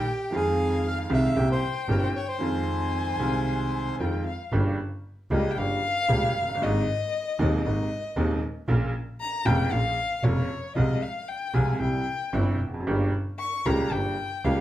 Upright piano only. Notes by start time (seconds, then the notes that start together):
0.31 F2 D#3 F3 G#3 C4
0.35 F4
1.09 C2 C3 D#3 G#3 C4 F4
1.36 C2 C3 E3 A#3 C4 G4
1.89 G1 G2 E3 A#3 C4 G4
2.38 F2 D#3 F3 G#3 C4 F4
3.18 C2 C3 D#3 G#3 C4 F4
4.00 F2 D#3 F3 G#3 C4 F4
4.52 G1 G2 C#3 G3 A#3 G4
5.31 C#2 C#3 G3 A#3 G4
5.58 G1 G2 C#3 G3 A#3 G4
6.09 C#2 C#3 G3 A#3 G4
6.41 F1
6.48 F#1
6.55 G1
6.62 G#1 G#2 C3 G#3 A#3 D#4
7.39 D#1 D#2 C3 G#3 A#3 D#4
7.65 G#1 G#2 C3 G#3 A#3 D#4
8.16 D#1 D#2 C3 G#3 A#3 D#4
8.68 A#1 A#2 C#3 F3 A#3 F4
9.45 F1 F2 C#3 F3 A#3 F4
9.72 A#1 A#2 C#3 F3 A#3 F4
10.25 F1 F2 C#3 F3 A#3 F4
10.76 C2 C3 F3 G#3 F4
11.54 C2 C3 F3 G#3 F4
11.80 C2 C3 E3 G3 E4
12.33 G1 G2 C3 E3 G3 E4
12.67 E2
12.74 F2
12.80 F#2
12.87 G1 G2 C#3 G3 A#3 G4
13.66 C#2 C#3 G3 A#3 G4
13.91 G1 G2 C#3 G3 A#3 G4
14.44 C#2 C#3 G3 A#3 G4